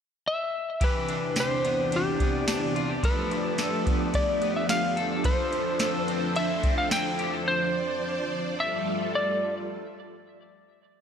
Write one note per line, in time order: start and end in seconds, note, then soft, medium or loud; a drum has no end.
0.28 0.84 E5 loud
0.80 3.01 C3 medium
0.80 3.01 E3 medium
0.80 3.03 E3 medium
0.80 3.01 D4 medium
0.80 1.36 G4 medium
0.80 1.40 B4 medium
0.80 5.21 D5 medium
0.80 kick loud
0.80 ride medium
1.08 1.92 D4 medium
1.08 ride soft
1.36 2.75 G4 medium
1.36 snare loud
1.36 ride medium
1.36 tambourine medium
1.40 1.95 C5 medium
1.64 2.20 B3 medium
1.64 ride soft
1.92 2.47 D4 medium
1.92 ride medium
1.96 2.73 G4 medium
2.20 3.62 B3 medium
2.20 kick medium
2.20 ride soft
2.48 3.30 D4 medium
2.48 snare loud
2.48 ride medium
2.48 tambourine medium
2.76 2.89 F4 medium
2.76 ride soft
2.89 3.03 G4 medium
3.03 8.54 F3 medium
3.03 5.24 F3 medium
3.03 5.23 A3 medium
3.03 8.55 D4 medium
3.03 5.23 G4 medium
3.03 3.58 A4 medium
3.03 4.18 B4 medium
3.03 kick loud
3.03 ride medium
3.31 4.13 E4 medium
3.31 ride soft
3.58 4.96 A4 medium
3.58 snare medium
3.58 ride medium
3.58 tambourine medium
3.86 4.40 B3 medium
3.86 kick medium
3.86 ride soft
4.14 5.27 E4 medium
4.14 4.56 D5 loud
4.14 kick medium
4.14 ride soft
4.41 5.30 B3 medium
4.41 ride soft
4.56 4.70 E5 medium
4.69 5.09 F5 loud
4.69 snare loud
4.69 ride medium
4.69 tambourine medium
4.97 5.24 A4 medium
4.97 ride soft
5.24 8.03 F3 medium
5.24 7.45 A4 medium
5.24 5.80 A4 medium
5.24 7.45 C5 medium
5.24 6.01 C5 medium
5.24 kick loud
5.24 ride medium
5.52 6.35 E4 medium
5.52 ride soft
5.79 7.19 A4 medium
5.79 snare loud
5.79 ride medium
5.79 tambourine medium
6.01 6.40 B4 medium
6.07 6.63 C4 medium
6.07 ride soft
6.36 6.90 E4 medium
6.36 6.77 E5 loud
6.36 ride soft
6.63 8.03 C4 medium
6.63 kick medium
6.63 ride soft
6.78 6.92 F5 medium
6.91 7.53 E4 medium
6.91 7.31 G5 loud
6.91 snare loud
6.91 ride medium
6.91 tambourine medium
7.19 7.34 G4 medium
7.19 ride soft
7.34 7.53 A4 soft
7.47 8.57 C5 medium
7.47 8.55 C5 loud
7.47 9.68 D5 loud
8.58 9.68 G3 medium
8.58 9.68 F4 medium
8.58 9.68 A4 medium
8.58 9.15 E5 loud
9.15 9.54 D5 medium